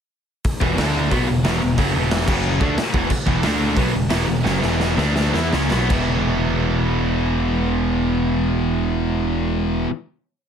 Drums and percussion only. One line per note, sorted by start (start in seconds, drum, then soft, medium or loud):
0.44 kick loud
0.44 open hi-hat medium
0.61 kick loud
0.78 snare loud
0.78 open hi-hat medium
1.11 kick loud
1.11 open hi-hat medium
1.44 snare loud
1.44 open hi-hat medium
1.78 kick loud
1.78 open hi-hat medium
2.11 snare loud
2.11 open hi-hat medium
2.28 kick loud
2.28 crash loud
2.61 kick loud
2.78 snare loud
2.78 open hi-hat medium
2.94 kick loud
3.10 kick loud
3.10 crash loud
3.27 kick loud
3.43 snare loud
3.43 open hi-hat medium
3.76 kick loud
3.76 open hi-hat medium
4.10 snare loud
4.10 open hi-hat medium
4.45 snare medium
4.62 snare medium
4.80 snare medium
4.98 snare medium
5.16 snare medium
5.34 snare medium
5.53 snare loud
5.71 snare medium
5.90 kick loud
5.90 crash medium